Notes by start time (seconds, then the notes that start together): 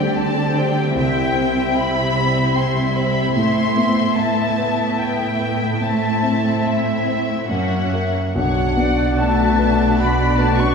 Already playing: D2 D3 G3 C4 G4 C5 D5 G5
0.15 G5 A5
0.55 C5 G5
0.95 C2 C3 E4 E5 G5
1.35 C4
1.75 E5 B5
2.16 C5
2.55 G5 C6
2.95 C5 B5
3.35 A2 A3 C6
3.77 B3
4.17 B3 E5 A5
4.59 B4
4.99 G5 A5
5.40 B4
5.81 A2 C4 E4 E5 A5
6.23 C4
6.64 E5
7.07 C5
7.50 F#2 A#3 C#4 F#4 F#5
7.93 A#4 E5
8.35 B1 B2 F#3 D4 F#4 C#5 F#5
8.77 B3 D5
9.18 A3 D5 E5 A5
9.59 B4
9.99 B3 D5 F#5 B5
10.38 A3 B4 A5
10.58 C#4 C#6